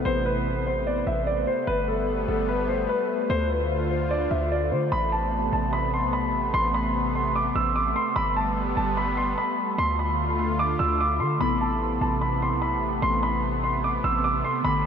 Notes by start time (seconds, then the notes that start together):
Already playing: C3 A3 B3 E4 A4
0.05 A1 C5
0.26 B4
0.67 C5
0.87 D5
1.07 A1 E5
1.27 D5
1.47 C5
1.67 G1 G3 A3 B3 B4
1.88 A4
2.28 G1 A4
2.49 B4
2.68 C5
2.89 B4
3.30 D2 D3 F4 C5
3.50 B4
3.91 C5
4.11 D5
4.31 D2 E5
4.52 D5
4.71 D3 C5
4.92 A1 C3 A3 B3 B5
5.12 A5
5.53 A1 A5
5.73 B5
5.94 C6
6.03 B1
6.13 B5
6.29 A1
6.54 A1 C6
6.74 B5
7.15 C6
7.36 D6
7.55 A1 E6
7.76 D6
7.96 C6
8.16 G1 G3 B3 B5
8.36 A5
8.77 G1 A5
8.97 B5
9.17 C6
9.38 B5
9.78 D2 D3 A3 F4 C6
9.99 B5
10.39 C6
10.59 D6
10.79 D2 E6
11.00 D6
11.20 D3 C6
11.39 A1 C3 A3 B3 E4 B5
11.43 A4
11.61 A5
12.01 A1 A5
12.21 B5
12.42 C6
12.52 B1
12.62 B5
12.77 A1
13.02 A1 C6
13.23 B5
13.64 C6
13.84 D6
14.04 A1 E6
14.24 D6
14.45 C6
14.63 G1 D3 G3 B3 G4 B5
14.67 A4